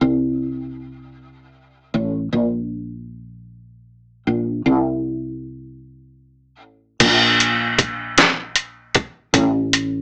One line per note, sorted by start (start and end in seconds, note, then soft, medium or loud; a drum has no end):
0.01 1.90 C2 medium
1.94 2.30 A1 medium
2.33 4.23 A#1 medium
4.27 4.63 A#1 medium
4.66 6.61 C2 medium
6.61 6.98 A1 medium
7.00 9.30 A#1 medium
7.00 kick medium
7.00 closed hi-hat medium
7.00 crash medium
7.40 closed hi-hat soft
7.79 kick medium
7.79 closed hi-hat soft
8.18 snare medium
8.18 closed hi-hat medium
8.56 closed hi-hat soft
8.95 kick medium
8.95 closed hi-hat soft
9.34 10.02 A1 medium
9.34 kick loud
9.34 closed hi-hat medium
9.73 closed hi-hat soft